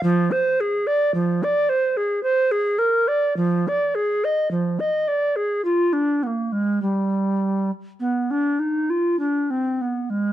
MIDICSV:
0, 0, Header, 1, 2, 480
1, 0, Start_track
1, 0, Tempo, 1098901
1, 19, Time_signature, 3, 2, 24, 8
1, 979, Tempo, 1132075
1, 2419, Tempo, 1188119
1, 4314, End_track
2, 0, Start_track
2, 0, Title_t, "Recorder"
2, 0, Program_c, 0, 74
2, 14, Note_on_c, 0, 53, 96
2, 137, Note_on_c, 0, 72, 75
2, 143, Note_off_c, 0, 53, 0
2, 264, Note_on_c, 0, 68, 78
2, 271, Note_off_c, 0, 72, 0
2, 380, Note_on_c, 0, 74, 74
2, 386, Note_off_c, 0, 68, 0
2, 497, Note_off_c, 0, 74, 0
2, 500, Note_on_c, 0, 53, 68
2, 626, Note_on_c, 0, 74, 78
2, 632, Note_off_c, 0, 53, 0
2, 739, Note_on_c, 0, 72, 73
2, 746, Note_off_c, 0, 74, 0
2, 860, Note_on_c, 0, 68, 67
2, 867, Note_off_c, 0, 72, 0
2, 972, Note_off_c, 0, 68, 0
2, 975, Note_on_c, 0, 72, 83
2, 1095, Note_on_c, 0, 68, 74
2, 1101, Note_off_c, 0, 72, 0
2, 1210, Note_on_c, 0, 70, 60
2, 1216, Note_off_c, 0, 68, 0
2, 1334, Note_on_c, 0, 74, 69
2, 1341, Note_off_c, 0, 70, 0
2, 1454, Note_off_c, 0, 74, 0
2, 1456, Note_on_c, 0, 53, 84
2, 1588, Note_on_c, 0, 74, 64
2, 1594, Note_off_c, 0, 53, 0
2, 1704, Note_on_c, 0, 68, 67
2, 1710, Note_off_c, 0, 74, 0
2, 1828, Note_on_c, 0, 75, 67
2, 1835, Note_off_c, 0, 68, 0
2, 1939, Note_off_c, 0, 75, 0
2, 1941, Note_on_c, 0, 53, 57
2, 2062, Note_on_c, 0, 75, 61
2, 2069, Note_off_c, 0, 53, 0
2, 2182, Note_on_c, 0, 74, 60
2, 2189, Note_off_c, 0, 75, 0
2, 2302, Note_on_c, 0, 68, 55
2, 2308, Note_off_c, 0, 74, 0
2, 2421, Note_off_c, 0, 68, 0
2, 2423, Note_on_c, 0, 65, 62
2, 2537, Note_on_c, 0, 62, 55
2, 2543, Note_off_c, 0, 65, 0
2, 2659, Note_on_c, 0, 59, 41
2, 2665, Note_off_c, 0, 62, 0
2, 2674, Note_on_c, 0, 58, 44
2, 2678, Note_off_c, 0, 59, 0
2, 2777, Note_on_c, 0, 56, 47
2, 2783, Note_off_c, 0, 58, 0
2, 2896, Note_off_c, 0, 56, 0
2, 2898, Note_on_c, 0, 55, 64
2, 3255, Note_off_c, 0, 55, 0
2, 3374, Note_on_c, 0, 59, 48
2, 3498, Note_on_c, 0, 62, 49
2, 3504, Note_off_c, 0, 59, 0
2, 3614, Note_on_c, 0, 63, 41
2, 3620, Note_off_c, 0, 62, 0
2, 3737, Note_on_c, 0, 65, 44
2, 3743, Note_off_c, 0, 63, 0
2, 3853, Note_off_c, 0, 65, 0
2, 3856, Note_on_c, 0, 62, 48
2, 3981, Note_on_c, 0, 60, 42
2, 3988, Note_off_c, 0, 62, 0
2, 4106, Note_on_c, 0, 59, 36
2, 4112, Note_off_c, 0, 60, 0
2, 4222, Note_on_c, 0, 56, 44
2, 4228, Note_off_c, 0, 59, 0
2, 4314, Note_off_c, 0, 56, 0
2, 4314, End_track
0, 0, End_of_file